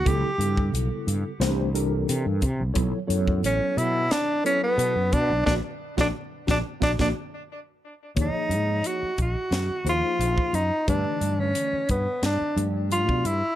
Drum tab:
HH |x-x-x-x-x-x-x-x-|x-x-x-x-x-x-x-x-|----------------|x-x-x-x-x-x-x-x-|
SD |--------o-------|--------o-------|o--o--o-oo------|--------o-------|
BD |o--o----------o-|o--o----------o-|o--o--o-oo------|o-----o------o--|

HH |x-x-x-x-x-x-x-x-|
SD |--------o-------|
BD |o-----o------o--|